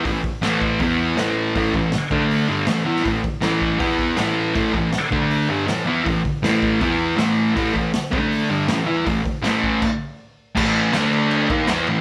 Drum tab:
CC |----------------|----------------|----------------|----------------|
HH |o---o---o---o---|o---o---o---o---|o---o---o---o---|o---o---o---o---|
SD |----o-------o---|----o-------o--o|----o-------o---|----o-------o---|
BD |o-o---o-o-------|o-o---o---------|o-o---o-o-o-----|o-o---o---------|

CC |----------------|----------------|--------x-------|x-x-x-x-x-x-x-x-|
HH |o---o---o---o---|o---o---o---o---|o---o-----------|----------------|
SD |----o-------o---|----o-------o---|----o-----------|-o--oo------o---|
BD |o-o---o-o-------|o-o---o---------|o-o---o-o-------|o---------o-----|